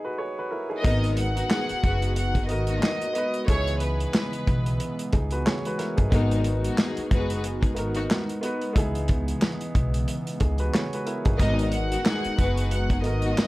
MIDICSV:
0, 0, Header, 1, 8, 480
1, 0, Start_track
1, 0, Key_signature, 5, "minor"
1, 0, Tempo, 659341
1, 616, Time_signature, 4, 2, 24, 8
1, 9807, End_track
2, 0, Start_track
2, 0, Title_t, "Violin section"
2, 0, Program_c, 0, 48
2, 604, Note_on_c, 0, 75, 106
2, 825, Note_off_c, 0, 75, 0
2, 854, Note_on_c, 0, 78, 93
2, 1546, Note_off_c, 0, 78, 0
2, 1579, Note_on_c, 0, 78, 84
2, 1793, Note_off_c, 0, 78, 0
2, 1807, Note_on_c, 0, 75, 88
2, 2502, Note_off_c, 0, 75, 0
2, 2541, Note_on_c, 0, 73, 112
2, 2755, Note_off_c, 0, 73, 0
2, 2776, Note_on_c, 0, 71, 79
2, 3606, Note_off_c, 0, 71, 0
2, 8283, Note_on_c, 0, 75, 107
2, 8505, Note_off_c, 0, 75, 0
2, 8531, Note_on_c, 0, 78, 89
2, 9224, Note_off_c, 0, 78, 0
2, 9257, Note_on_c, 0, 78, 81
2, 9473, Note_off_c, 0, 78, 0
2, 9486, Note_on_c, 0, 75, 93
2, 9807, Note_off_c, 0, 75, 0
2, 9807, End_track
3, 0, Start_track
3, 0, Title_t, "Upright piano"
3, 0, Program_c, 1, 0
3, 0, Control_c, 1, 64, 127
3, 0, Note_on_c, 1, 59, 77
3, 0, Note_on_c, 1, 63, 54
3, 0, Note_on_c, 1, 64, 64
3, 0, Note_on_c, 1, 68, 64
3, 33, Note_on_c, 1, 71, 73
3, 37, Note_on_c, 1, 66, 58
3, 130, Note_off_c, 1, 71, 0
3, 132, Note_off_c, 1, 66, 0
3, 133, Note_on_c, 1, 73, 73
3, 137, Note_off_c, 1, 68, 0
3, 137, Note_on_c, 1, 68, 61
3, 267, Note_off_c, 1, 73, 0
3, 269, Note_off_c, 1, 68, 0
3, 283, Note_on_c, 1, 71, 76
3, 287, Note_on_c, 1, 66, 57
3, 370, Note_on_c, 1, 70, 65
3, 373, Note_off_c, 1, 64, 0
3, 373, Note_on_c, 1, 64, 57
3, 375, Note_off_c, 1, 71, 0
3, 377, Note_off_c, 1, 66, 0
3, 505, Note_off_c, 1, 70, 0
3, 506, Note_off_c, 1, 64, 0
3, 507, Note_on_c, 1, 68, 65
3, 511, Note_off_c, 1, 63, 0
3, 511, Note_on_c, 1, 63, 52
3, 600, Note_off_c, 1, 59, 0
3, 600, Note_off_c, 1, 63, 0
3, 600, Note_on_c, 1, 59, 81
3, 611, Note_on_c, 1, 63, 76
3, 621, Note_on_c, 1, 66, 69
3, 624, Control_c, 1, 64, 0
3, 632, Note_on_c, 1, 70, 85
3, 739, Note_off_c, 1, 68, 0
3, 766, Control_c, 1, 64, 127
3, 1279, Note_off_c, 1, 59, 0
3, 1285, Note_off_c, 1, 63, 0
3, 1290, Note_off_c, 1, 66, 0
3, 1295, Note_off_c, 1, 70, 0
3, 1797, Note_on_c, 1, 59, 68
3, 1808, Note_on_c, 1, 63, 65
3, 1818, Note_on_c, 1, 66, 66
3, 1829, Note_on_c, 1, 70, 79
3, 2152, Note_off_c, 1, 59, 0
3, 2158, Note_off_c, 1, 63, 0
3, 2163, Note_off_c, 1, 66, 0
3, 2168, Note_off_c, 1, 70, 0
3, 2282, Note_on_c, 1, 59, 74
3, 2293, Note_on_c, 1, 63, 69
3, 2304, Note_on_c, 1, 66, 71
3, 2314, Note_on_c, 1, 71, 84
3, 2466, Note_off_c, 1, 59, 0
3, 2472, Note_off_c, 1, 63, 0
3, 2477, Note_off_c, 1, 66, 0
3, 2482, Note_off_c, 1, 71, 0
3, 2516, Note_on_c, 1, 59, 79
3, 2527, Note_on_c, 1, 63, 77
3, 2538, Note_on_c, 1, 64, 68
3, 2545, Control_c, 1, 64, 0
3, 2548, Note_on_c, 1, 68, 86
3, 2691, Control_c, 1, 64, 127
3, 3198, Note_off_c, 1, 59, 0
3, 3203, Note_off_c, 1, 63, 0
3, 3208, Note_off_c, 1, 64, 0
3, 3214, Note_off_c, 1, 68, 0
3, 3732, Note_on_c, 1, 68, 65
3, 3736, Note_on_c, 1, 63, 55
3, 3866, Note_off_c, 1, 68, 0
3, 3868, Note_off_c, 1, 63, 0
3, 3874, Note_on_c, 1, 71, 74
3, 3879, Note_on_c, 1, 66, 60
3, 3970, Note_off_c, 1, 71, 0
3, 3973, Note_off_c, 1, 66, 0
3, 3974, Note_on_c, 1, 73, 75
3, 3979, Note_on_c, 1, 68, 63
3, 4107, Note_off_c, 1, 73, 0
3, 4109, Note_off_c, 1, 68, 0
3, 4125, Note_on_c, 1, 71, 78
3, 4130, Note_on_c, 1, 66, 60
3, 4211, Note_on_c, 1, 70, 70
3, 4215, Note_on_c, 1, 64, 58
3, 4216, Note_off_c, 1, 71, 0
3, 4219, Note_off_c, 1, 66, 0
3, 4345, Note_off_c, 1, 70, 0
3, 4346, Note_on_c, 1, 68, 72
3, 4348, Note_off_c, 1, 64, 0
3, 4351, Note_on_c, 1, 63, 56
3, 4441, Note_off_c, 1, 63, 0
3, 4442, Note_on_c, 1, 59, 79
3, 4452, Note_on_c, 1, 63, 74
3, 4463, Note_on_c, 1, 66, 71
3, 4464, Control_c, 1, 64, 0
3, 4474, Note_on_c, 1, 70, 89
3, 4578, Note_off_c, 1, 68, 0
3, 4596, Control_c, 1, 64, 127
3, 5120, Note_off_c, 1, 59, 0
3, 5126, Note_off_c, 1, 63, 0
3, 5131, Note_off_c, 1, 66, 0
3, 5137, Note_off_c, 1, 70, 0
3, 5638, Note_on_c, 1, 59, 68
3, 5649, Note_on_c, 1, 63, 67
3, 5660, Note_on_c, 1, 66, 65
3, 5669, Note_on_c, 1, 70, 79
3, 5993, Note_off_c, 1, 59, 0
3, 5998, Note_off_c, 1, 63, 0
3, 6003, Note_off_c, 1, 66, 0
3, 6008, Note_off_c, 1, 70, 0
3, 6123, Note_on_c, 1, 59, 77
3, 6133, Note_on_c, 1, 63, 73
3, 6143, Note_on_c, 1, 66, 71
3, 6154, Note_on_c, 1, 71, 84
3, 6307, Note_off_c, 1, 59, 0
3, 6312, Note_off_c, 1, 63, 0
3, 6317, Note_off_c, 1, 66, 0
3, 6322, Note_off_c, 1, 71, 0
3, 6357, Note_on_c, 1, 59, 79
3, 6368, Note_on_c, 1, 63, 78
3, 6378, Note_on_c, 1, 64, 69
3, 6386, Control_c, 1, 64, 0
3, 6389, Note_on_c, 1, 68, 87
3, 6505, Control_c, 1, 64, 127
3, 7038, Note_off_c, 1, 59, 0
3, 7044, Note_off_c, 1, 63, 0
3, 7049, Note_off_c, 1, 64, 0
3, 7054, Note_off_c, 1, 68, 0
3, 7573, Note_on_c, 1, 68, 67
3, 7578, Note_on_c, 1, 63, 55
3, 7707, Note_off_c, 1, 68, 0
3, 7709, Note_off_c, 1, 63, 0
3, 7715, Note_on_c, 1, 71, 72
3, 7719, Note_on_c, 1, 66, 60
3, 7810, Note_off_c, 1, 71, 0
3, 7813, Note_off_c, 1, 66, 0
3, 7814, Note_on_c, 1, 73, 74
3, 7818, Note_on_c, 1, 68, 60
3, 7947, Note_off_c, 1, 73, 0
3, 7949, Note_off_c, 1, 68, 0
3, 7966, Note_on_c, 1, 71, 76
3, 7970, Note_on_c, 1, 66, 60
3, 8051, Note_on_c, 1, 70, 69
3, 8055, Note_on_c, 1, 64, 59
3, 8056, Note_off_c, 1, 71, 0
3, 8058, Note_off_c, 1, 66, 0
3, 8185, Note_off_c, 1, 70, 0
3, 8187, Note_off_c, 1, 64, 0
3, 8187, Note_on_c, 1, 68, 67
3, 8191, Note_on_c, 1, 63, 53
3, 8282, Note_off_c, 1, 63, 0
3, 8282, Note_on_c, 1, 59, 79
3, 8293, Note_on_c, 1, 63, 74
3, 8303, Note_on_c, 1, 66, 72
3, 8304, Control_c, 1, 64, 0
3, 8313, Note_on_c, 1, 70, 87
3, 8419, Note_off_c, 1, 68, 0
3, 8437, Control_c, 1, 64, 127
3, 8960, Note_off_c, 1, 59, 0
3, 8966, Note_off_c, 1, 63, 0
3, 8971, Note_off_c, 1, 66, 0
3, 8976, Note_off_c, 1, 70, 0
3, 9478, Note_on_c, 1, 59, 68
3, 9488, Note_on_c, 1, 63, 68
3, 9499, Note_on_c, 1, 66, 63
3, 9510, Note_on_c, 1, 70, 79
3, 9807, Note_off_c, 1, 59, 0
3, 9807, Note_off_c, 1, 63, 0
3, 9807, Note_off_c, 1, 66, 0
3, 9807, Note_off_c, 1, 70, 0
3, 9807, End_track
4, 0, Start_track
4, 0, Title_t, "String section"
4, 0, Program_c, 2, 48
4, 613, Note_on_c, 2, 56, 110
4, 613, Note_on_c, 2, 59, 117
4, 613, Note_on_c, 2, 63, 117
4, 806, Note_off_c, 2, 56, 0
4, 806, Note_off_c, 2, 59, 0
4, 806, Note_off_c, 2, 63, 0
4, 986, Note_on_c, 2, 59, 78
4, 986, Note_on_c, 2, 63, 88
4, 987, Note_on_c, 2, 66, 87
4, 1070, Note_off_c, 2, 59, 0
4, 1070, Note_off_c, 2, 63, 0
4, 1071, Note_off_c, 2, 66, 0
4, 1101, Note_on_c, 2, 59, 80
4, 1101, Note_on_c, 2, 63, 87
4, 1101, Note_on_c, 2, 68, 99
4, 1291, Note_off_c, 2, 59, 0
4, 1291, Note_off_c, 2, 63, 0
4, 1291, Note_off_c, 2, 68, 0
4, 1342, Note_on_c, 2, 66, 86
4, 1342, Note_on_c, 2, 71, 93
4, 1343, Note_on_c, 2, 68, 82
4, 1532, Note_off_c, 2, 66, 0
4, 1532, Note_off_c, 2, 68, 0
4, 1532, Note_off_c, 2, 71, 0
4, 1716, Note_on_c, 2, 59, 76
4, 1716, Note_on_c, 2, 63, 78
4, 1716, Note_on_c, 2, 68, 81
4, 1796, Note_off_c, 2, 59, 0
4, 1796, Note_off_c, 2, 63, 0
4, 1796, Note_off_c, 2, 68, 0
4, 1959, Note_on_c, 2, 59, 81
4, 1959, Note_on_c, 2, 63, 75
4, 1959, Note_on_c, 2, 66, 95
4, 2038, Note_off_c, 2, 59, 0
4, 2038, Note_off_c, 2, 63, 0
4, 2038, Note_off_c, 2, 66, 0
4, 4453, Note_on_c, 2, 63, 127
4, 4454, Note_on_c, 2, 56, 115
4, 4454, Note_on_c, 2, 59, 120
4, 4646, Note_off_c, 2, 63, 0
4, 4647, Note_off_c, 2, 56, 0
4, 4647, Note_off_c, 2, 59, 0
4, 4838, Note_on_c, 2, 59, 83
4, 4838, Note_on_c, 2, 66, 94
4, 4839, Note_on_c, 2, 63, 84
4, 4918, Note_off_c, 2, 59, 0
4, 4918, Note_off_c, 2, 63, 0
4, 4918, Note_off_c, 2, 66, 0
4, 4942, Note_on_c, 2, 59, 89
4, 4943, Note_on_c, 2, 63, 93
4, 4943, Note_on_c, 2, 68, 100
4, 5132, Note_off_c, 2, 59, 0
4, 5132, Note_off_c, 2, 63, 0
4, 5132, Note_off_c, 2, 68, 0
4, 5183, Note_on_c, 2, 71, 97
4, 5184, Note_on_c, 2, 66, 92
4, 5184, Note_on_c, 2, 68, 87
4, 5372, Note_off_c, 2, 68, 0
4, 5372, Note_off_c, 2, 71, 0
4, 5373, Note_off_c, 2, 66, 0
4, 5544, Note_on_c, 2, 63, 73
4, 5545, Note_on_c, 2, 59, 73
4, 5545, Note_on_c, 2, 68, 87
4, 5629, Note_off_c, 2, 63, 0
4, 5630, Note_off_c, 2, 59, 0
4, 5630, Note_off_c, 2, 68, 0
4, 5795, Note_on_c, 2, 59, 78
4, 5795, Note_on_c, 2, 63, 79
4, 5795, Note_on_c, 2, 66, 88
4, 5875, Note_off_c, 2, 59, 0
4, 5875, Note_off_c, 2, 63, 0
4, 5875, Note_off_c, 2, 66, 0
4, 8292, Note_on_c, 2, 59, 109
4, 8293, Note_on_c, 2, 56, 112
4, 8293, Note_on_c, 2, 63, 117
4, 8486, Note_off_c, 2, 56, 0
4, 8486, Note_off_c, 2, 59, 0
4, 8486, Note_off_c, 2, 63, 0
4, 8666, Note_on_c, 2, 59, 80
4, 8666, Note_on_c, 2, 63, 88
4, 8666, Note_on_c, 2, 66, 90
4, 8750, Note_off_c, 2, 59, 0
4, 8750, Note_off_c, 2, 63, 0
4, 8750, Note_off_c, 2, 66, 0
4, 8780, Note_on_c, 2, 63, 88
4, 8781, Note_on_c, 2, 59, 84
4, 8781, Note_on_c, 2, 68, 97
4, 8970, Note_off_c, 2, 63, 0
4, 8971, Note_off_c, 2, 59, 0
4, 8971, Note_off_c, 2, 68, 0
4, 9023, Note_on_c, 2, 66, 85
4, 9023, Note_on_c, 2, 68, 80
4, 9023, Note_on_c, 2, 71, 93
4, 9212, Note_off_c, 2, 66, 0
4, 9212, Note_off_c, 2, 68, 0
4, 9212, Note_off_c, 2, 71, 0
4, 9396, Note_on_c, 2, 63, 78
4, 9396, Note_on_c, 2, 68, 83
4, 9397, Note_on_c, 2, 59, 77
4, 9476, Note_off_c, 2, 63, 0
4, 9476, Note_off_c, 2, 68, 0
4, 9477, Note_off_c, 2, 59, 0
4, 9639, Note_on_c, 2, 59, 82
4, 9640, Note_on_c, 2, 63, 75
4, 9640, Note_on_c, 2, 66, 95
4, 9718, Note_off_c, 2, 59, 0
4, 9718, Note_off_c, 2, 66, 0
4, 9719, Note_off_c, 2, 63, 0
4, 9807, End_track
5, 0, Start_track
5, 0, Title_t, "Analog synth pad"
5, 0, Program_c, 3, 89
5, 623, Note_on_c, 3, 66, 82
5, 624, Note_on_c, 3, 56, 91
5, 624, Note_on_c, 3, 59, 94
5, 624, Note_on_c, 3, 63, 79
5, 2520, Note_off_c, 3, 66, 0
5, 2521, Note_off_c, 3, 59, 0
5, 2521, Note_off_c, 3, 63, 0
5, 2540, Note_on_c, 3, 49, 93
5, 2541, Note_on_c, 3, 52, 98
5, 2541, Note_on_c, 3, 59, 74
5, 4439, Note_off_c, 3, 49, 0
5, 4439, Note_off_c, 3, 52, 0
5, 4439, Note_off_c, 3, 59, 0
5, 4451, Note_on_c, 3, 63, 73
5, 4451, Note_on_c, 3, 66, 73
5, 4452, Note_on_c, 3, 59, 97
5, 6354, Note_off_c, 3, 59, 0
5, 6354, Note_off_c, 3, 63, 0
5, 6354, Note_off_c, 3, 66, 0
5, 6378, Note_on_c, 3, 49, 89
5, 6378, Note_on_c, 3, 52, 95
5, 6378, Note_on_c, 3, 59, 79
5, 8270, Note_off_c, 3, 56, 0
5, 8278, Note_off_c, 3, 49, 0
5, 8278, Note_off_c, 3, 52, 0
5, 8278, Note_off_c, 3, 59, 0
5, 8302, Note_on_c, 3, 66, 79
5, 8303, Note_on_c, 3, 56, 87
5, 8303, Note_on_c, 3, 63, 77
5, 8304, Note_on_c, 3, 59, 94
5, 9807, Note_off_c, 3, 56, 0
5, 9807, Note_off_c, 3, 59, 0
5, 9807, Note_off_c, 3, 63, 0
5, 9807, Note_off_c, 3, 66, 0
5, 9807, End_track
6, 0, Start_track
6, 0, Title_t, "Upright bass"
6, 0, Program_c, 4, 32
6, 618, Note_on_c, 4, 32, 108
6, 1020, Note_off_c, 4, 32, 0
6, 1340, Note_on_c, 4, 30, 95
6, 1821, Note_off_c, 4, 30, 0
6, 1821, Note_on_c, 4, 32, 91
6, 2020, Note_off_c, 4, 32, 0
6, 2538, Note_on_c, 4, 37, 111
6, 2939, Note_off_c, 4, 37, 0
6, 3260, Note_on_c, 4, 35, 93
6, 3459, Note_off_c, 4, 35, 0
6, 3739, Note_on_c, 4, 37, 101
6, 3939, Note_off_c, 4, 37, 0
6, 4357, Note_on_c, 4, 31, 93
6, 4441, Note_off_c, 4, 31, 0
6, 4457, Note_on_c, 4, 32, 109
6, 4859, Note_off_c, 4, 32, 0
6, 5180, Note_on_c, 4, 30, 94
6, 5661, Note_off_c, 4, 30, 0
6, 5661, Note_on_c, 4, 32, 90
6, 5860, Note_off_c, 4, 32, 0
6, 6379, Note_on_c, 4, 37, 107
6, 6780, Note_off_c, 4, 37, 0
6, 7101, Note_on_c, 4, 35, 93
6, 7300, Note_off_c, 4, 35, 0
6, 7579, Note_on_c, 4, 37, 100
6, 7779, Note_off_c, 4, 37, 0
6, 8197, Note_on_c, 4, 31, 91
6, 8281, Note_off_c, 4, 31, 0
6, 8299, Note_on_c, 4, 32, 105
6, 8700, Note_off_c, 4, 32, 0
6, 9020, Note_on_c, 4, 30, 92
6, 9500, Note_off_c, 4, 30, 0
6, 9500, Note_on_c, 4, 32, 91
6, 9699, Note_off_c, 4, 32, 0
6, 9807, End_track
7, 0, Start_track
7, 0, Title_t, "Muted upright bass strokes"
7, 1241, Note_on_c, 9, 29, 47
7, 1314, Note_off_c, 9, 29, 0
7, 5083, Note_on_c, 9, 29, 47
7, 5155, Note_off_c, 9, 29, 0
7, 8919, Note_on_c, 9, 29, 47
7, 8992, Note_off_c, 9, 29, 0
7, 9807, End_track
8, 0, Start_track
8, 0, Title_t, "Drums"
8, 615, Note_on_c, 9, 36, 127
8, 615, Note_on_c, 9, 42, 103
8, 687, Note_off_c, 9, 36, 0
8, 687, Note_off_c, 9, 42, 0
8, 756, Note_on_c, 9, 42, 52
8, 828, Note_off_c, 9, 42, 0
8, 850, Note_on_c, 9, 42, 84
8, 923, Note_off_c, 9, 42, 0
8, 996, Note_on_c, 9, 42, 59
8, 1069, Note_off_c, 9, 42, 0
8, 1094, Note_on_c, 9, 39, 96
8, 1097, Note_on_c, 9, 38, 121
8, 1167, Note_off_c, 9, 39, 0
8, 1170, Note_off_c, 9, 38, 0
8, 1232, Note_on_c, 9, 42, 50
8, 1305, Note_off_c, 9, 42, 0
8, 1337, Note_on_c, 9, 36, 96
8, 1337, Note_on_c, 9, 42, 70
8, 1410, Note_off_c, 9, 36, 0
8, 1410, Note_off_c, 9, 42, 0
8, 1473, Note_on_c, 9, 42, 63
8, 1546, Note_off_c, 9, 42, 0
8, 1574, Note_on_c, 9, 42, 84
8, 1647, Note_off_c, 9, 42, 0
8, 1711, Note_on_c, 9, 36, 101
8, 1713, Note_on_c, 9, 42, 58
8, 1783, Note_off_c, 9, 36, 0
8, 1786, Note_off_c, 9, 42, 0
8, 1811, Note_on_c, 9, 42, 72
8, 1884, Note_off_c, 9, 42, 0
8, 1943, Note_on_c, 9, 42, 55
8, 2015, Note_off_c, 9, 42, 0
8, 2059, Note_on_c, 9, 39, 106
8, 2062, Note_on_c, 9, 38, 124
8, 2132, Note_off_c, 9, 39, 0
8, 2135, Note_off_c, 9, 38, 0
8, 2195, Note_on_c, 9, 42, 53
8, 2268, Note_off_c, 9, 42, 0
8, 2294, Note_on_c, 9, 42, 76
8, 2367, Note_off_c, 9, 42, 0
8, 2430, Note_on_c, 9, 42, 50
8, 2502, Note_off_c, 9, 42, 0
8, 2534, Note_on_c, 9, 42, 100
8, 2535, Note_on_c, 9, 36, 124
8, 2607, Note_off_c, 9, 36, 0
8, 2607, Note_off_c, 9, 42, 0
8, 2675, Note_on_c, 9, 42, 53
8, 2748, Note_off_c, 9, 42, 0
8, 2769, Note_on_c, 9, 42, 82
8, 2841, Note_off_c, 9, 42, 0
8, 2915, Note_on_c, 9, 42, 57
8, 2988, Note_off_c, 9, 42, 0
8, 3014, Note_on_c, 9, 39, 96
8, 3018, Note_on_c, 9, 38, 121
8, 3087, Note_off_c, 9, 39, 0
8, 3090, Note_off_c, 9, 38, 0
8, 3153, Note_on_c, 9, 42, 53
8, 3226, Note_off_c, 9, 42, 0
8, 3257, Note_on_c, 9, 36, 96
8, 3257, Note_on_c, 9, 42, 70
8, 3330, Note_off_c, 9, 36, 0
8, 3330, Note_off_c, 9, 42, 0
8, 3394, Note_on_c, 9, 42, 61
8, 3466, Note_off_c, 9, 42, 0
8, 3494, Note_on_c, 9, 42, 84
8, 3567, Note_off_c, 9, 42, 0
8, 3634, Note_on_c, 9, 42, 61
8, 3706, Note_off_c, 9, 42, 0
8, 3731, Note_on_c, 9, 42, 75
8, 3736, Note_on_c, 9, 36, 91
8, 3804, Note_off_c, 9, 42, 0
8, 3809, Note_off_c, 9, 36, 0
8, 3863, Note_on_c, 9, 42, 55
8, 3936, Note_off_c, 9, 42, 0
8, 3979, Note_on_c, 9, 39, 99
8, 3983, Note_on_c, 9, 38, 126
8, 4052, Note_off_c, 9, 39, 0
8, 4055, Note_off_c, 9, 38, 0
8, 4115, Note_on_c, 9, 42, 53
8, 4188, Note_off_c, 9, 42, 0
8, 4215, Note_on_c, 9, 42, 75
8, 4219, Note_on_c, 9, 38, 39
8, 4288, Note_off_c, 9, 42, 0
8, 4292, Note_off_c, 9, 38, 0
8, 4351, Note_on_c, 9, 42, 51
8, 4354, Note_on_c, 9, 36, 92
8, 4423, Note_off_c, 9, 42, 0
8, 4427, Note_off_c, 9, 36, 0
8, 4455, Note_on_c, 9, 36, 122
8, 4455, Note_on_c, 9, 42, 101
8, 4528, Note_off_c, 9, 36, 0
8, 4528, Note_off_c, 9, 42, 0
8, 4596, Note_on_c, 9, 42, 53
8, 4669, Note_off_c, 9, 42, 0
8, 4691, Note_on_c, 9, 42, 85
8, 4763, Note_off_c, 9, 42, 0
8, 4837, Note_on_c, 9, 42, 56
8, 4909, Note_off_c, 9, 42, 0
8, 4936, Note_on_c, 9, 39, 97
8, 4939, Note_on_c, 9, 38, 117
8, 5008, Note_off_c, 9, 39, 0
8, 5012, Note_off_c, 9, 38, 0
8, 5074, Note_on_c, 9, 42, 53
8, 5147, Note_off_c, 9, 42, 0
8, 5177, Note_on_c, 9, 36, 94
8, 5177, Note_on_c, 9, 42, 71
8, 5250, Note_off_c, 9, 36, 0
8, 5250, Note_off_c, 9, 42, 0
8, 5315, Note_on_c, 9, 42, 63
8, 5388, Note_off_c, 9, 42, 0
8, 5416, Note_on_c, 9, 42, 83
8, 5489, Note_off_c, 9, 42, 0
8, 5552, Note_on_c, 9, 36, 98
8, 5555, Note_on_c, 9, 42, 59
8, 5624, Note_off_c, 9, 36, 0
8, 5628, Note_off_c, 9, 42, 0
8, 5653, Note_on_c, 9, 42, 74
8, 5725, Note_off_c, 9, 42, 0
8, 5784, Note_on_c, 9, 42, 57
8, 5857, Note_off_c, 9, 42, 0
8, 5900, Note_on_c, 9, 39, 102
8, 5904, Note_on_c, 9, 38, 127
8, 5973, Note_off_c, 9, 39, 0
8, 5977, Note_off_c, 9, 38, 0
8, 6037, Note_on_c, 9, 42, 53
8, 6110, Note_off_c, 9, 42, 0
8, 6136, Note_on_c, 9, 42, 76
8, 6209, Note_off_c, 9, 42, 0
8, 6272, Note_on_c, 9, 42, 51
8, 6345, Note_off_c, 9, 42, 0
8, 6376, Note_on_c, 9, 36, 124
8, 6377, Note_on_c, 9, 42, 101
8, 6449, Note_off_c, 9, 36, 0
8, 6450, Note_off_c, 9, 42, 0
8, 6517, Note_on_c, 9, 42, 51
8, 6590, Note_off_c, 9, 42, 0
8, 6611, Note_on_c, 9, 42, 81
8, 6620, Note_on_c, 9, 36, 105
8, 6684, Note_off_c, 9, 42, 0
8, 6692, Note_off_c, 9, 36, 0
8, 6756, Note_on_c, 9, 42, 59
8, 6829, Note_off_c, 9, 42, 0
8, 6856, Note_on_c, 9, 39, 95
8, 6860, Note_on_c, 9, 38, 124
8, 6929, Note_off_c, 9, 39, 0
8, 6932, Note_off_c, 9, 38, 0
8, 6994, Note_on_c, 9, 42, 53
8, 7067, Note_off_c, 9, 42, 0
8, 7098, Note_on_c, 9, 36, 96
8, 7098, Note_on_c, 9, 42, 71
8, 7171, Note_off_c, 9, 36, 0
8, 7171, Note_off_c, 9, 42, 0
8, 7236, Note_on_c, 9, 42, 62
8, 7309, Note_off_c, 9, 42, 0
8, 7337, Note_on_c, 9, 42, 84
8, 7410, Note_off_c, 9, 42, 0
8, 7476, Note_on_c, 9, 42, 60
8, 7549, Note_off_c, 9, 42, 0
8, 7572, Note_on_c, 9, 42, 76
8, 7576, Note_on_c, 9, 36, 92
8, 7645, Note_off_c, 9, 42, 0
8, 7649, Note_off_c, 9, 36, 0
8, 7704, Note_on_c, 9, 42, 55
8, 7777, Note_off_c, 9, 42, 0
8, 7820, Note_on_c, 9, 39, 104
8, 7824, Note_on_c, 9, 38, 127
8, 7893, Note_off_c, 9, 39, 0
8, 7896, Note_off_c, 9, 38, 0
8, 7957, Note_on_c, 9, 42, 55
8, 8030, Note_off_c, 9, 42, 0
8, 8057, Note_on_c, 9, 42, 74
8, 8129, Note_off_c, 9, 42, 0
8, 8191, Note_on_c, 9, 42, 50
8, 8195, Note_on_c, 9, 36, 92
8, 8264, Note_off_c, 9, 42, 0
8, 8268, Note_off_c, 9, 36, 0
8, 8295, Note_on_c, 9, 36, 123
8, 8296, Note_on_c, 9, 42, 99
8, 8368, Note_off_c, 9, 36, 0
8, 8368, Note_off_c, 9, 42, 0
8, 8437, Note_on_c, 9, 42, 52
8, 8510, Note_off_c, 9, 42, 0
8, 8530, Note_on_c, 9, 42, 83
8, 8603, Note_off_c, 9, 42, 0
8, 8676, Note_on_c, 9, 42, 60
8, 8749, Note_off_c, 9, 42, 0
8, 8775, Note_on_c, 9, 39, 95
8, 8779, Note_on_c, 9, 38, 119
8, 8848, Note_off_c, 9, 39, 0
8, 8852, Note_off_c, 9, 38, 0
8, 8914, Note_on_c, 9, 42, 52
8, 8987, Note_off_c, 9, 42, 0
8, 9017, Note_on_c, 9, 36, 95
8, 9017, Note_on_c, 9, 42, 68
8, 9090, Note_off_c, 9, 36, 0
8, 9090, Note_off_c, 9, 42, 0
8, 9154, Note_on_c, 9, 42, 61
8, 9227, Note_off_c, 9, 42, 0
8, 9255, Note_on_c, 9, 42, 83
8, 9328, Note_off_c, 9, 42, 0
8, 9391, Note_on_c, 9, 36, 96
8, 9394, Note_on_c, 9, 42, 62
8, 9464, Note_off_c, 9, 36, 0
8, 9466, Note_off_c, 9, 42, 0
8, 9492, Note_on_c, 9, 42, 74
8, 9565, Note_off_c, 9, 42, 0
8, 9624, Note_on_c, 9, 42, 58
8, 9697, Note_off_c, 9, 42, 0
8, 9740, Note_on_c, 9, 39, 101
8, 9743, Note_on_c, 9, 38, 123
8, 9807, Note_off_c, 9, 38, 0
8, 9807, Note_off_c, 9, 39, 0
8, 9807, End_track
0, 0, End_of_file